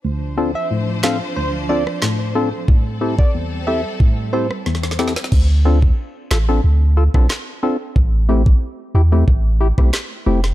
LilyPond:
<<
  \new Staff \with { instrumentName = "Soft synth lead" } { \time 4/4 \key d \dorian \tempo 4 = 91 r8. e''16 r8 f''16 r16 c''16 r16 d''16 r4 r16 | r8. d''16 r8 e''16 r8. c''16 r4 r16 | r1 | r1 | }
  \new Staff \with { instrumentName = "Synth stab" } { \time 4/4 \key d \dorian << { r8 <c' d' f' a'>16 r8. <c' d' f' a'>16 r8. <c' d' f' a'>16 r8. <c' d' f' a'>16 r16 | r8 <c' e' g' a'>16 r8. <c' e' g' a'>16 r8. <c' e' g' a'>16 r8. <c' e' g' a'>16 r16 | r8 <c' d' f' a'>16 r8. <f' a'>16 <c' d' f' a'>16 r8 <f' a'>16 <c' d' f' a'>16 r8 <c' d' f' a'>16 r16 | r8 <a c' e' g'>16 r8. <e' g'>16 <a c' e' g'>16 r8 <e' g'>16 <a c' e' g'>16 r8 <a c' e' g'>16 r16 | } \\ { d,4 a,4 d,4 a,4 | a,4 e,4 a,4 e,4 | r1 | r1 | } >> }
  \new Staff \with { instrumentName = "String section" } { \time 4/4 \key d \dorian <f d' c''>1 | <g c' a'>1 | r1 | r1 | }
  \new Staff \with { instrumentName = "Sub bass" } { \clef bass \time 4/4 \key d \dorian r1 | r1 | d,4 r8 a,,8 d,8. b,,16 r4 | a,,4 r8 e,8 a,,8. b,,16 r8 f,,8 | }
  \new DrumStaff \with { instrumentName = "Drums" } \drummode { \time 4/4 r4 r8 <hc sn>8 r8. ss16 <hc sn>4 | bd8. bd16 r4 bd8. ss16 sn32 sn32 sn32 sn32 sn32 sn32 sn32 sn32 | <cymc bd>8. bd16 r8 <hc sn>8 r8. <bd ss>16 <hc sn>4 | bd8. bd16 r4 bd8. <bd ss>16 <hc sn>8. sn16 | }
>>